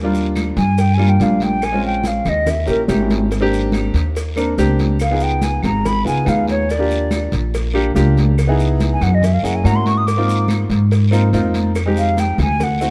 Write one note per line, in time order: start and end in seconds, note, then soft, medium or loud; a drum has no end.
0.00 0.51 D#2 loud
0.00 0.63 G3 medium
0.00 0.63 A#3 medium
0.00 0.63 D4 medium
0.04 0.64 F4 loud
0.15 high conga soft
0.15 maracas medium
0.35 cowbell medium
0.35 high conga medium
0.35 short guiro medium
0.35 claves medium
0.35 maracas medium
0.57 1.16 G2 loud
0.57 0.81 G#5 loud
0.57 cowbell medium
0.57 high conga soft
0.57 short guiro medium
0.57 maracas soft
0.78 0.96 G5 medium
0.78 cowbell loud
0.78 high conga soft
0.78 long guiro medium
0.78 maracas medium
0.94 1.13 G3 medium
0.94 1.11 G#5 medium
0.98 1.14 A#3 medium
0.98 1.14 D4 medium
0.98 1.14 F4 medium
0.98 high conga soft
0.98 claves medium
1.09 1.24 G5 medium
1.20 2.20 A#1 medium
1.20 1.57 G3 medium
1.20 1.57 A#3 medium
1.20 1.58 D4 medium
1.20 1.58 F4 medium
1.20 1.45 F5 medium
1.20 cowbell medium
1.20 high conga medium
1.20 short guiro medium
1.20 maracas medium
1.40 1.66 G5 medium
1.40 cowbell medium
1.40 high conga medium
1.40 short guiro medium
1.40 maracas soft
1.62 1.85 G#5 loud
1.62 cowbell loud
1.62 high conga soft
1.62 long guiro medium
1.62 claves medium
1.62 maracas medium
1.72 2.32 G#3 medium
1.72 2.32 C4 medium
1.72 2.33 C#4 medium
1.72 2.33 F4 medium
1.83 2.09 G5 medium
1.83 high conga soft
2.04 2.30 F5 medium
2.04 cowbell medium
2.04 high conga loud
2.04 short guiro medium
2.04 maracas medium
2.25 2.65 D#2 loud
2.25 2.52 D#5 loud
2.25 cowbell medium
2.25 high conga soft
2.25 low conga medium
2.25 short guiro medium
2.25 claves medium
2.25 maracas soft
2.46 2.70 E5 medium
2.46 cowbell loud
2.46 high conga soft
2.46 low conga medium
2.46 long guiro medium
2.46 maracas medium
2.66 2.88 A#1 medium
2.66 2.82 A#3 medium
2.66 2.82 C#4 medium
2.66 2.82 E4 medium
2.66 2.83 G4 medium
2.66 high conga soft
2.66 maracas medium
2.70 2.82 A#4 medium
2.87 3.88 G#1 loud
2.87 3.25 A#3 medium
2.87 3.26 C#4 medium
2.87 3.26 E4 medium
2.87 3.26 G4 medium
2.87 cowbell medium
2.87 high conga loud
2.87 short guiro medium
2.87 claves medium
2.87 maracas medium
3.10 cowbell medium
3.10 high conga medium
3.10 short guiro medium
3.10 maracas soft
3.31 cowbell loud
3.31 long guiro medium
3.31 maracas medium
3.40 4.00 A#3 loud
3.40 4.01 C4 medium
3.40 4.01 D4 medium
3.40 4.01 G4 loud
3.51 high conga soft
3.51 maracas medium
3.72 cowbell medium
3.72 high conga loud
3.72 short guiro medium
3.72 claves medium
3.72 maracas medium
3.94 4.54 D#2 loud
3.94 cowbell medium
3.94 high conga soft
3.94 short guiro medium
3.94 maracas soft
4.15 cowbell loud
4.15 high conga soft
4.15 long guiro medium
4.15 maracas medium
4.36 4.51 A#3 medium
4.36 4.52 C4 medium
4.36 4.52 D4 medium
4.36 4.52 A#4 loud
4.36 high conga soft
4.36 claves medium
4.36 maracas medium
4.57 5.57 C#2 medium
4.57 4.94 A#3 medium
4.57 4.95 C4 medium
4.57 4.95 D4 medium
4.57 4.95 G4 loud
4.57 cowbell medium
4.57 high conga medium
4.57 short guiro medium
4.57 maracas medium
4.79 cowbell medium
4.79 high conga medium
4.79 short guiro medium
4.79 maracas soft
4.99 5.25 F5 medium
4.99 cowbell loud
4.99 long guiro medium
4.99 claves medium
4.99 maracas medium
5.11 5.70 B3 medium
5.11 5.70 D#4 medium
5.11 5.71 F4 medium
5.11 5.71 G#4 medium
5.20 5.45 G5 medium
5.20 high conga soft
5.20 maracas medium
5.42 5.64 G#5 medium
5.42 cowbell medium
5.42 high conga medium
5.42 short guiro medium
5.42 maracas medium
5.63 6.03 G#1 loud
5.63 5.88 A#5 medium
5.63 cowbell medium
5.63 high conga soft
5.63 low conga medium
5.63 short guiro medium
5.63 claves medium
5.63 maracas soft
5.85 6.07 B5 loud
5.85 cowbell loud
5.85 high conga soft
5.85 low conga medium
5.85 long guiro medium
5.85 maracas medium
6.05 6.25 C#2 medium
6.05 6.20 B3 medium
6.05 6.21 D#4 medium
6.05 6.21 F4 medium
6.05 6.21 G#4 medium
6.05 6.30 G#5 loud
6.05 high conga soft
6.05 maracas medium
6.25 7.26 D#2 loud
6.25 6.63 B3 medium
6.25 6.63 D#4 medium
6.25 6.64 F4 medium
6.25 6.64 G#4 medium
6.25 6.49 F5 medium
6.25 cowbell medium
6.25 high conga loud
6.25 short guiro medium
6.25 claves medium
6.25 maracas medium
6.48 6.72 C#5 medium
6.48 cowbell medium
6.48 high conga medium
6.48 short guiro medium
6.48 maracas soft
6.69 7.33 D5 medium
6.69 cowbell loud
6.69 high conga soft
6.69 long guiro medium
6.69 maracas medium
6.78 7.38 A#3 medium
6.78 7.38 D4 medium
6.78 7.39 F4 medium
6.78 7.39 G4 medium
6.91 high conga soft
6.91 maracas medium
7.11 cowbell medium
7.11 high conga loud
7.11 short guiro medium
7.11 claves medium
7.11 maracas medium
7.32 7.92 A#1 loud
7.32 cowbell medium
7.32 high conga soft
7.32 short guiro medium
7.32 maracas soft
7.54 cowbell loud
7.54 high conga soft
7.54 long guiro medium
7.54 maracas medium
7.73 7.89 A#3 medium
7.73 7.89 D4 medium
7.73 7.89 F4 medium
7.73 7.90 G4 loud
7.73 high conga soft
7.73 claves medium
7.95 8.95 C#2 loud
7.95 8.32 A#3 medium
7.95 8.33 D4 medium
7.95 8.33 F4 medium
7.95 8.33 G4 loud
7.95 cowbell medium
7.95 high conga medium
7.95 short guiro medium
7.95 maracas medium
8.17 cowbell medium
8.17 high conga loud
8.17 short guiro medium
8.17 maracas soft
8.38 cowbell loud
8.38 high conga soft
8.38 long guiro medium
8.38 claves medium
8.38 maracas medium
8.47 9.07 B3 medium
8.47 9.07 D#4 medium
8.47 9.08 E4 medium
8.47 9.08 G#4 loud
8.60 high conga soft
8.60 maracas medium
8.80 cowbell medium
8.80 high conga loud
8.80 short guiro medium
8.80 maracas medium
8.93 9.05 G#5 medium
9.01 9.41 F#2 loud
9.01 9.16 F#5 medium
9.01 cowbell medium
9.01 high conga soft
9.01 low conga medium
9.01 short guiro medium
9.01 claves medium
9.01 maracas soft
9.15 9.27 D#5 medium
9.22 9.35 E5 medium
9.22 cowbell medium
9.22 high conga soft
9.22 low conga medium
9.22 long guiro medium
9.22 maracas medium
9.34 9.46 F5 medium
9.43 9.63 F#2 medium
9.43 9.58 A#3 medium
9.43 9.58 C#4 medium
9.43 9.59 E4 medium
9.43 9.59 G#4 medium
9.43 9.57 F#5 medium
9.43 high conga soft
9.43 maracas medium
9.56 9.67 G#5 medium
9.64 10.64 G#2 loud
9.64 10.01 A#3 medium
9.64 10.02 C#4 medium
9.64 10.02 E4 medium
9.64 10.02 F#4 medium
9.64 9.77 A#5 loud
9.64 cowbell medium
9.64 high conga loud
9.64 short guiro medium
9.64 claves medium
9.64 maracas medium
9.76 9.88 C6 medium
9.86 9.99 C#6 loud
9.86 cowbell medium
9.86 high conga medium
9.86 short guiro medium
9.86 maracas soft
9.98 10.08 D#6 loud
10.06 10.49 D6 medium
10.06 cowbell loud
10.06 high conga soft
10.06 long guiro medium
10.06 maracas medium
10.16 10.76 A#3 medium
10.16 10.76 C4 medium
10.16 10.77 D#4 medium
10.16 10.77 F4 loud
10.28 high conga soft
10.28 maracas medium
10.48 cowbell medium
10.48 high conga loud
10.48 short guiro medium
10.48 claves medium
10.48 maracas medium
10.70 11.29 G#2 loud
10.70 cowbell medium
10.70 high conga soft
10.70 short guiro medium
10.70 maracas soft
10.91 cowbell loud
10.91 high conga soft
10.91 long guiro medium
10.91 maracas medium
11.11 11.27 A#3 loud
11.11 11.27 C4 medium
11.11 11.27 D#4 medium
11.11 11.27 F4 loud
11.11 high conga soft
11.11 claves medium
11.11 maracas medium
11.33 12.33 F2 loud
11.33 11.70 A#3 medium
11.33 11.70 C4 medium
11.33 11.71 D#4 medium
11.33 11.71 F4 loud
11.33 cowbell medium
11.33 high conga medium
11.33 short guiro medium
11.33 maracas medium
11.54 cowbell medium
11.54 high conga medium
11.54 short guiro medium
11.54 maracas soft
11.75 cowbell loud
11.75 high conga soft
11.75 long guiro medium
11.75 claves medium
11.75 maracas medium
11.86 12.45 G#3 medium
11.86 12.45 C4 medium
11.86 12.46 D#4 medium
11.86 12.46 G4 medium
11.97 12.21 F5 loud
11.97 high conga soft
11.97 maracas medium
12.17 12.40 G5 medium
12.17 cowbell medium
12.17 high conga medium
12.17 short guiro medium
12.17 maracas medium
12.38 12.90 D2 loud
12.38 12.65 G#5 loud
12.38 cowbell medium
12.38 high conga soft
12.38 low conga medium
12.38 short guiro medium
12.38 claves medium
12.38 maracas soft
12.60 12.90 F#5 loud
12.60 cowbell loud
12.60 high conga soft
12.60 low conga medium
12.60 long guiro medium
12.60 maracas medium
12.81 12.90 A3 medium
12.81 12.90 C4 medium
12.81 12.90 E4 medium
12.81 12.90 F#4 medium
12.81 maracas medium